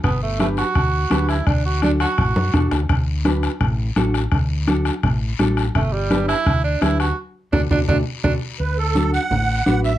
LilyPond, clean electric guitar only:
\new Staff \with { instrumentName = "Clean electric guitar" } { \time 4/4 \key d \major \tempo 4 = 168 r4 <d' g' b'>8 r4. <d' g' b'>8 r8 | r4 <d' fis' a'>8 r4. <d' fis' a'>8 r8 | r4 <d' fis' b'>8 r4. <d' fis' a'>8 r8 | r4 <d' fis' a'>8 r4. <d' fis' a'>8 r8 |
r4 <d' g' b'>8 r4. <d' g' b'>8 r8 | r4 <d' fis' a'>8 <d' fis' a'>8 <d' fis' a'>8 r8 <d' fis' a'>8 r8 | r4 <d' fis' a'>8 r4. <d' fis' b'>8 r8 | }